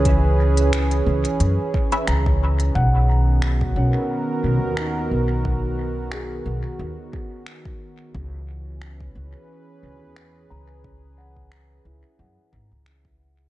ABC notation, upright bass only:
X:1
M:4/4
L:1/16
Q:"Swing 16ths" 1/4=89
K:C#dor
V:1 name="Upright bass" clef=bass
C,,6 C,, z F,, z3 C,,4 | B,,,6 B,,, z3 B,,, D,,3 B,,,2- | B,,,6 B,,, z D,, z6 z | C,,6 C,, z3 C,, E,,3 C,,2- |
C,,6 C,, z F,, z G,,, C,,4- C,, |]